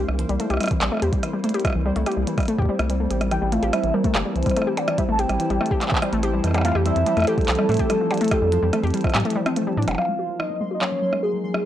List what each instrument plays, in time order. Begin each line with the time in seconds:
Already playing: ambient pad A#3 A#4, synth texture C5
0.00 ambient pad G3 C4 E4
0.08 analog synth bass C2, synth arpeggio sound G3, cross-stick
0.19 synth arpeggio sound E3, closed hi-hat
0.29 analog synth bass C2, synth arpeggio sound G3, closed hi-hat
0.40 synth arpeggio sound A3, closed hi-hat
0.50 analog synth bass C2, synth arpeggio sound G4, cross-stick, closed hi-hat
0.54 cross-stick
0.57 cross-stick
0.61 synth arpeggio sound G3, cross-stick, closed hi-hat
0.63 cross-stick, closed hi-hat
0.66 cross-stick, closed hi-hat
0.68 synth arpeggio sound E3, kick, closed hi-hat
0.71 closed hi-hat
0.81 analog synth bass A#1, synth arpeggio sound G3, clap, closed hi-hat
0.92 synth arpeggio sound A3, cross-stick
0.94 cross-stick
0.97 cross-stick
1.00 analog synth bass E2, synth arpeggio sound G4, cross-stick, closed hi-hat
1.13 synth arpeggio sound G3, kick, closed hi-hat
1.23 synth arpeggio sound E3, cross-stick, closed hi-hat
1.34 synth arpeggio sound G3
1.44 synth arpeggio sound A3, closed hi-hat
1.49 closed hi-hat
1.54 synth arpeggio sound G4, closed hi-hat
1.60 closed hi-hat
1.65 synth arpeggio sound G3, kick, cross-stick, closed hi-hat
1.67 cross-stick
1.70 cross-stick
1.73 analog synth bass C2, synth arpeggio sound E3, cross-stick
1.86 synth arpeggio sound G3
1.96 analog synth bass C2, synth arpeggio sound A3, closed hi-hat
2.06 synth arpeggio sound G4, cross-stick, closed hi-hat
2.12 closed hi-hat
2.17 analog synth bass C2, synth arpeggio sound G3
2.27 synth arpeggio sound E3, closed hi-hat
2.38 synth arpeggio sound G3, kick, cross-stick, closed hi-hat
2.40 cross-stick, closed hi-hat
2.43 cross-stick, closed hi-hat
2.46 synth arpeggio sound A3, cross-stick, closed hi-hat
2.48 closed hi-hat
2.58 synth arpeggio sound G4, kick
2.62 kick
2.65 synth arpeggio sound G3, kick
2.79 analog synth bass C2, synth arpeggio sound A3, cross-stick, closed hi-hat
2.90 synth arpeggio sound G3, closed hi-hat
3.00 synth arpeggio sound A3
3.11 analog synth bass A1, synth arpeggio sound G4, closed hi-hat
3.21 synth arpeggio sound G3, cross-stick, closed hi-hat
3.31 synth arpeggio sound E3, ambient pad E3 E4 A5, soft synth lead G5, cross-stick, closed hi-hat
3.42 analog synth bass A1, synth arpeggio sound G3
3.52 synth arpeggio sound A3, soft synth lead F5, closed hi-hat
3.63 analog synth bass A1, synth arpeggio sound G4, closed hi-hat
3.73 synth arpeggio sound G3, soft synth lead E5, cross-stick, closed hi-hat
3.84 analog synth bass A1, synth arpeggio sound E3, closed hi-hat
3.94 synth arpeggio sound G3, soft synth lead A#4
4.04 synth arpeggio sound A3, kick, closed hi-hat
4.15 analog synth bass G1, synth arpeggio sound G4, cross-stick, clap, closed hi-hat
4.25 synth arpeggio sound G3
4.36 analog synth bass C2, synth arpeggio sound E3, soft synth lead C5, closed hi-hat
4.43 kick, cross-stick, closed hi-hat
4.46 synth arpeggio sound G3, closed hi-hat
4.50 cross-stick, closed hi-hat
4.56 synth arpeggio sound A3, cross-stick, closed hi-hat
4.62 cross-stick
4.67 synth arpeggio sound G4
4.77 synth arpeggio sound G3, soft synth lead D5, closed hi-hat, percussion blips
4.88 synth arpeggio sound E3, cross-stick, closed hi-hat
4.98 synth arpeggio sound G3, soft synth lead E5, kick, closed hi-hat
5.08 analog synth bass A1, synth arpeggio sound A3, soft synth lead A5
5.19 synth arpeggio sound G4, soft synth lead G5, closed hi-hat
5.29 analog synth bass A1, synth arpeggio sound G3, cross-stick, closed hi-hat
5.40 synth arpeggio sound E3, closed hi-hat
5.50 analog synth bass A1, synth arpeggio sound G3, closed hi-hat
5.61 synth arpeggio sound A3, cross-stick
5.66 closed hi-hat
5.71 synth arpeggio sound G4, kick
5.81 synth arpeggio sound G3, clap, closed hi-hat
5.88 synth arpeggio sound E3, kick, clap
5.95 clap
6.02 synth arpeggio sound G3, cross-stick, closed hi-hat
6.13 analog synth bass A1, synth arpeggio sound A3, closed hi-hat
6.23 synth arpeggio sound G4, closed hi-hat
6.34 synth arpeggio sound G3
6.44 analog synth bass F2, synth arpeggio sound E3, cross-stick, closed hi-hat
6.47 cross-stick
6.51 cross-stick
6.54 synth arpeggio sound G3, cross-stick, closed hi-hat, percussion blips
6.58 cross-stick, percussion blips
6.61 ambient pad F3, cross-stick, closed hi-hat, percussion blips
6.65 synth arpeggio sound A3, soft synth lead F5, percussion blips
6.68 percussion blips
6.72 analog synth bass F2, synth arpeggio sound G4, cross-stick, percussion blips
6.86 synth arpeggio sound G3, soft synth lead E5, closed hi-hat
6.96 analog synth bass F2, synth arpeggio sound F3, closed hi-hat
7.06 synth arpeggio sound G3, closed hi-hat
7.17 analog synth bass F2, synth arpeggio sound A3, cross-stick, closed hi-hat
7.19 cross-stick, closed hi-hat
7.22 cross-stick, closed hi-hat
7.25 synth arpeggio sound G4, soft synth lead A4, cross-stick, closed hi-hat
7.38 synth arpeggio sound G3, kick, closed hi-hat
7.41 closed hi-hat
7.45 analog synth bass C2, synth arpeggio sound F3, clap, closed hi-hat
7.48 closed hi-hat
7.52 closed hi-hat
7.55 synth arpeggio sound G3, cross-stick, closed hi-hat
7.69 analog synth bass A2, synth arpeggio sound A3, closed hi-hat
7.72 closed hi-hat
7.74 closed hi-hat
7.77 synth arpeggio sound G4, kick, closed hi-hat
7.79 closed hi-hat
7.90 synth arpeggio sound G3, cross-stick, closed hi-hat
8.00 synth arpeggio sound F3
8.11 synth arpeggio sound G3, closed hi-hat, percussion blips
8.14 closed hi-hat
8.18 closed hi-hat
8.21 synth arpeggio sound A3, closed hi-hat
8.24 closed hi-hat
8.28 kick, cross-stick, closed hi-hat
8.31 synth arpeggio sound G4, closed hi-hat
8.42 analog synth bass F2, synth arpeggio sound G3
8.52 synth arpeggio sound F3, closed hi-hat
8.63 analog synth bass F2, synth arpeggio sound G3
8.73 synth arpeggio sound A3, cross-stick, closed hi-hat
8.83 analog synth bass F2, synth arpeggio sound G4, closed hi-hat
8.87 closed hi-hat
8.90 closed hi-hat
8.94 synth arpeggio sound G3, closed hi-hat
8.97 closed hi-hat
9.04 synth arpeggio sound F3, kick, cross-stick, closed hi-hat
9.07 cross-stick
9.10 cross-stick, closed hi-hat
9.12 analog synth bass A2, cross-stick
9.15 synth arpeggio sound G3, cross-stick, clap, closed hi-hat
9.17 cross-stick, closed hi-hat
9.23 synth arpeggio sound A3, cross-stick, closed hi-hat
9.30 closed hi-hat
9.36 synth arpeggio sound G3
9.46 synth arpeggio sound C4, cross-stick, closed hi-hat
9.56 synth arpeggio sound A3, closed hi-hat
9.67 synth arpeggio sound G3
9.77 analog synth bass A2, synth arpeggio sound D4
9.82 closed hi-hat
9.88 analog synth bass F1, synth arpeggio sound G3, cross-stick, closed hi-hat, percussion blips
9.91 percussion blips
9.95 soft synth lead F5, synth texture C6, cross-stick, percussion blips
9.98 synth arpeggio sound F#3, ambient pad F#3 A#3 C#4 D#4 A#4, percussion blips
10.02 percussion blips
10.05 synth arpeggio sound G#3, percussion blips
10.19 synth arpeggio sound F#4
10.29 synth arpeggio sound F#3
10.40 synth arpeggio sound F3, soft synth lead D#5, cross-stick
10.50 synth arpeggio sound F#3
10.61 synth arpeggio sound G#3
10.71 synth arpeggio sound F#4, soft synth lead D#5
10.81 synth arpeggio sound F#3, soft synth lead C#5, cross-stick, clap
10.92 synth arpeggio sound F3
11.02 synth arpeggio sound F#3
11.13 synth arpeggio sound G#3, cross-stick
11.23 synth arpeggio sound F#4, soft synth lead G#4
11.33 synth arpeggio sound F#3
11.44 synth arpeggio sound F3
11.54 synth arpeggio sound F#3, cross-stick